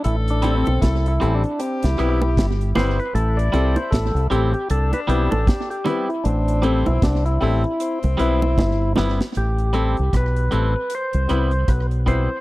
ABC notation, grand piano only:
X:1
M:4/4
L:1/8
Q:"Swing 16ths" 1/4=77
K:Am
V:1 name="Grand piano"
z [CGA] z [CGA] z [CEB] z [CEB] | z [CGA] z [CGA] z [CEB] z [CEB] | z [CGA] z [CGA] z [CEB] z [CEB] | z [CGA] z [CGA] z [CEB] z [CEB] |]